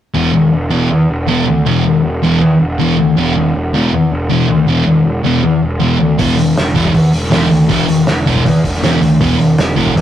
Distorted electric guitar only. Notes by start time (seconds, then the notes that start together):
0.14 E2 B2 E3
0.70 E2 B2 E3
1.27 E2 B2 E3
1.66 E2 B2 E3
2.23 E2 B2 E3
2.79 E2 B2 E3
3.16 E2 B2 E3
3.74 E2 B2 E3
4.29 E2 B2 E3
4.67 E2 B2 E3
5.24 E2 B2 E3
5.80 E2 B2 E3
6.18 E2 B2 E3
6.75 E2 B2 E3
7.30 E2 B2 E3
7.68 E2 B2 E3
8.26 E2 B2 E3
8.83 E2 B2 E3
9.20 E2 B2 E3
9.76 E2 B2 E3